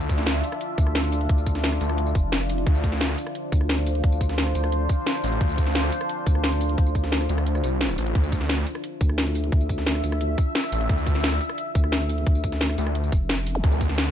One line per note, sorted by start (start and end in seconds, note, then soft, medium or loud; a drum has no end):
0.00 0.42 D2 loud
0.00 14.11 D4 medium
0.00 14.11 F4 medium
0.00 2.64 E5 loud
0.00 tambourine soft
0.09 kick medium
0.09 closed hi-hat medium
0.09 tambourine medium
0.18 snare soft
0.18 closed hi-hat soft
0.27 snare loud
0.27 closed hi-hat medium
0.35 cross-stick soft
0.44 closed hi-hat medium
0.44 tambourine medium
0.52 cross-stick soft
0.52 closed hi-hat soft
0.61 closed hi-hat medium
0.78 1.28 D2 loud
0.78 kick loud
0.78 closed hi-hat medium
0.78 tambourine medium
0.87 cross-stick soft
0.95 snare loud
0.95 closed hi-hat medium
1.04 closed hi-hat soft
1.04 tambourine soft
1.12 open hi-hat medium
1.12 tambourine medium
1.21 closed hi-hat soft
1.29 1.79 D2 loud
1.29 kick loud
1.29 closed hi-hat medium
1.38 tambourine soft
1.47 kick medium
1.47 closed hi-hat medium
1.47 tambourine medium
1.55 snare soft
1.55 closed hi-hat soft
1.64 snare loud
1.64 closed hi-hat medium
1.72 cross-stick soft
1.81 2.14 D2 loud
1.81 closed hi-hat medium
1.81 tambourine medium
1.89 cross-stick soft
1.89 closed hi-hat soft
1.98 closed hi-hat medium
2.07 tambourine soft
2.15 2.65 F1 loud
2.15 kick loud
2.15 closed hi-hat medium
2.15 tambourine medium
2.32 snare loud
2.32 closed hi-hat medium
2.41 cross-stick soft
2.41 closed hi-hat soft
2.41 tambourine soft
2.49 open hi-hat medium
2.49 tambourine medium
2.58 closed hi-hat soft
2.67 3.17 D2 loud
2.67 8.13 C5 loud
2.67 kick loud
2.67 closed hi-hat medium
2.75 tambourine soft
2.84 kick medium
2.84 closed hi-hat medium
2.84 tambourine medium
2.92 snare soft
2.92 closed hi-hat soft
3.01 snare loud
3.01 closed hi-hat medium
3.09 cross-stick soft
3.18 closed hi-hat medium
3.18 tambourine medium
3.27 cross-stick soft
3.27 closed hi-hat soft
3.35 closed hi-hat medium
3.52 4.02 D2 loud
3.52 kick loud
3.52 closed hi-hat medium
3.52 tambourine medium
3.61 cross-stick soft
3.69 snare loud
3.69 closed hi-hat medium
3.78 closed hi-hat soft
3.78 tambourine soft
3.87 open hi-hat medium
3.87 tambourine medium
3.95 closed hi-hat soft
4.04 4.54 D2 loud
4.04 kick loud
4.04 closed hi-hat medium
4.12 tambourine soft
4.21 kick medium
4.21 closed hi-hat medium
4.21 tambourine medium
4.29 snare soft
4.29 closed hi-hat soft
4.38 snare loud
4.38 closed hi-hat medium
4.47 cross-stick soft
4.55 4.88 D2 loud
4.55 closed hi-hat medium
4.55 tambourine medium
4.64 cross-stick soft
4.64 closed hi-hat soft
4.72 closed hi-hat medium
4.89 kick loud
4.89 closed hi-hat medium
4.89 tambourine medium
5.07 snare loud
5.07 closed hi-hat medium
5.15 cross-stick soft
5.15 closed hi-hat soft
5.15 tambourine soft
5.24 5.39 A1 loud
5.24 open hi-hat medium
5.24 tambourine medium
5.32 closed hi-hat soft
5.41 5.91 D2 loud
5.41 kick loud
5.41 closed hi-hat medium
5.49 tambourine soft
5.58 kick medium
5.58 closed hi-hat medium
5.58 tambourine medium
5.67 snare soft
5.67 closed hi-hat soft
5.75 snare loud
5.75 closed hi-hat loud
5.84 cross-stick soft
5.92 closed hi-hat medium
5.92 tambourine medium
6.01 cross-stick soft
6.01 closed hi-hat soft
6.09 closed hi-hat loud
6.27 6.77 D2 loud
6.27 kick loud
6.27 closed hi-hat medium
6.27 tambourine medium
6.35 cross-stick soft
6.44 snare loud
6.44 closed hi-hat medium
6.52 closed hi-hat soft
6.52 tambourine soft
6.61 open hi-hat medium
6.61 tambourine medium
6.69 closed hi-hat soft
6.78 7.28 D2 loud
6.78 kick loud
6.78 closed hi-hat loud
6.87 tambourine soft
6.95 kick medium
6.95 closed hi-hat medium
6.95 tambourine medium
7.04 snare soft
7.04 closed hi-hat soft
7.12 snare loud
7.12 closed hi-hat loud
7.21 cross-stick soft
7.21 tambourine soft
7.29 7.62 D2 loud
7.29 closed hi-hat medium
7.29 tambourine medium
7.38 cross-stick soft
7.38 closed hi-hat soft
7.47 closed hi-hat loud
7.55 cross-stick soft
7.55 tambourine soft
7.64 7.97 C2 loud
7.64 closed hi-hat medium
7.64 tambourine medium
7.81 snare loud
7.81 closed hi-hat loud
7.89 cross-stick soft
7.89 closed hi-hat soft
7.89 tambourine soft
7.98 8.14 A1 loud
7.98 open hi-hat medium
7.98 tambourine medium
8.07 closed hi-hat soft
8.15 8.65 D2 loud
8.15 13.61 E5 loud
8.15 kick loud
8.15 closed hi-hat loud
8.24 tambourine soft
8.32 kick medium
8.32 closed hi-hat medium
8.32 tambourine medium
8.41 snare soft
8.41 closed hi-hat soft
8.49 snare loud
8.49 closed hi-hat loud
8.58 cross-stick soft
8.67 closed hi-hat medium
8.67 tambourine medium
8.75 cross-stick soft
8.75 closed hi-hat soft
8.84 closed hi-hat loud
9.01 9.51 D2 loud
9.01 kick loud
9.01 closed hi-hat medium
9.01 tambourine medium
9.09 cross-stick soft
9.18 snare loud
9.18 closed hi-hat medium
9.27 closed hi-hat soft
9.27 tambourine soft
9.35 open hi-hat medium
9.35 tambourine medium
9.44 closed hi-hat soft
9.52 10.02 D2 loud
9.52 kick loud
9.52 closed hi-hat medium
9.61 tambourine soft
9.69 kick medium
9.69 closed hi-hat medium
9.69 tambourine medium
9.78 snare soft
9.78 closed hi-hat soft
9.87 snare loud
9.87 closed hi-hat loud
9.95 cross-stick soft
10.04 10.37 D2 medium
10.04 closed hi-hat medium
10.04 tambourine medium
10.12 cross-stick medium
10.12 closed hi-hat soft
10.21 closed hi-hat loud
10.38 kick loud
10.38 closed hi-hat medium
10.38 tambourine medium
10.55 snare loud
10.55 closed hi-hat medium
10.64 cross-stick soft
10.64 closed hi-hat soft
10.64 tambourine soft
10.72 10.88 A1 loud
10.72 open hi-hat medium
10.72 tambourine medium
10.81 closed hi-hat soft
10.89 11.39 D2 loud
10.89 kick loud
10.89 closed hi-hat medium
10.98 tambourine soft
11.07 kick medium
11.07 closed hi-hat medium
11.07 tambourine medium
11.15 snare soft
11.15 closed hi-hat soft
11.24 snare loud
11.24 closed hi-hat medium
11.32 cross-stick soft
11.41 closed hi-hat medium
11.41 tambourine medium
11.49 cross-stick soft
11.49 closed hi-hat soft
11.58 closed hi-hat medium
11.75 12.25 D2 loud
11.75 kick loud
11.75 closed hi-hat medium
11.75 tambourine medium
11.84 cross-stick soft
11.92 snare loud
11.92 closed hi-hat medium
12.01 closed hi-hat soft
12.01 tambourine soft
12.09 open hi-hat medium
12.09 tambourine medium
12.18 closed hi-hat soft
12.27 12.77 D2 loud
12.27 kick loud
12.27 closed hi-hat medium
12.35 tambourine soft
12.44 kick medium
12.44 closed hi-hat medium
12.44 tambourine medium
12.52 snare soft
12.52 closed hi-hat soft
12.61 snare loud
12.61 closed hi-hat medium
12.69 cross-stick soft
12.78 13.11 D2 loud
12.78 closed hi-hat medium
12.78 tambourine medium
12.87 cross-stick soft
12.87 closed hi-hat soft
12.95 closed hi-hat medium
13.04 tambourine soft
13.12 13.62 F1 loud
13.12 kick loud
13.12 closed hi-hat medium
13.12 tambourine medium
13.29 snare loud
13.29 closed hi-hat medium
13.38 cross-stick soft
13.38 closed hi-hat soft
13.38 tambourine soft
13.47 open hi-hat medium
13.47 tambourine medium
13.55 closed hi-hat soft
13.55 zap medium
13.64 14.11 D2 loud
13.64 14.11 F5 loud
13.64 kick loud
13.64 closed hi-hat medium
13.72 tambourine soft
13.81 kick medium
13.81 closed hi-hat medium
13.81 tambourine medium
13.89 snare soft
13.89 closed hi-hat soft
13.98 snare loud
13.98 closed hi-hat medium
14.07 cross-stick soft